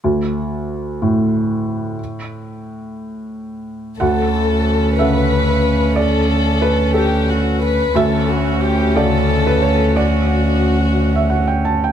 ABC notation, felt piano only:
X:1
M:6/8
L:1/16
Q:3/8=60
K:D
V:1 name="Felt piano"
z12 | z12 | f6 e6 | d4 B2 A6 |
e6 d3 B c2 | d6- d e f g a g |]
V:2 name="Felt piano" clef=bass
D,,6 A,,6- | A,,12 | D,,6 [C,Af]6- | [C,Af]12 |
D,,6 [C,FA]6- | [C,FA]12 |]